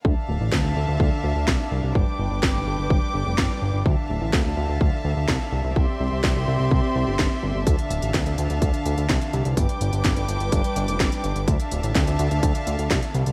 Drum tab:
HH |----------------|----------------|----------------|----------------|
SD |----o-------o---|----o-------o---|----o-------o---|----o-------o---|
BD |o---o---o---o---|o---o---o---o---|o---o---o---o---|o---o---o---o---|

HH |xxxxxxxxxxxxxxxx|xxxxxxxxxxxxxxxx|xxxxxxxxxxxxxxxx|
SD |----o-------o---|----o-------o---|----o-------o---|
BD |o---o---o---o---|o---o---o---o---|o---o---o---o---|